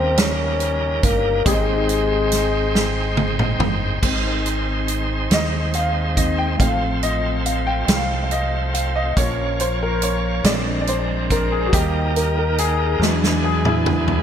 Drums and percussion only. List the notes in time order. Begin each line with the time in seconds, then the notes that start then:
0.18 snare, closed hi-hat
0.60 closed hi-hat
1.03 kick, closed hi-hat
1.46 kick, closed hi-hat
1.89 closed hi-hat
2.32 snare, closed hi-hat
2.75 snare
3.17 high tom
3.39 mid tom
3.60 mid tom
4.03 kick, crash
4.46 closed hi-hat
4.88 closed hi-hat
5.31 snare, closed hi-hat
5.74 closed hi-hat
6.17 kick, closed hi-hat
6.60 kick, closed hi-hat
7.03 closed hi-hat
7.46 closed hi-hat
7.88 snare, closed hi-hat
8.31 closed hi-hat
8.75 closed hi-hat
9.17 kick, closed hi-hat
9.60 closed hi-hat
10.02 closed hi-hat
10.44 snare, closed hi-hat
10.87 closed hi-hat
11.30 kick, closed hi-hat
11.73 kick, closed hi-hat
12.16 closed hi-hat
12.58 closed hi-hat
13.02 snare
13.24 snare
13.65 mid tom
13.86 mid tom
14.08 floor tom